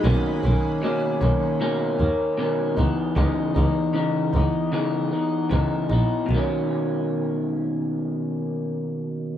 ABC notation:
X:1
M:4/4
L:1/16
Q:"Swing 16ths" 1/4=77
K:B
V:1 name="Clean electric guitar"
[B,,D,A,C]2 [D,A,C]2 [B,,D,A,C]2 [D,A,C]2 [B,,D,A,C]2 [D,A,C]2 [B,,D,A,C]2 [E,B,D]2 | [C,E,B,D]2 [E,B,D]2 [C,E,B,D]2 [E,B,D]2 [C,E,B,D]2 [E,B,D]2 [C,E,B,D]2 [E,B,D]2 | [B,,D,A,C]16 |]
V:2 name="Double bass" clef=bass
B,,,2 B,,,3 z B,,,4 D,,4 C,,2 | C,,2 C,,3 z C,,6 C,,2 A,,,2 | B,,,16 |]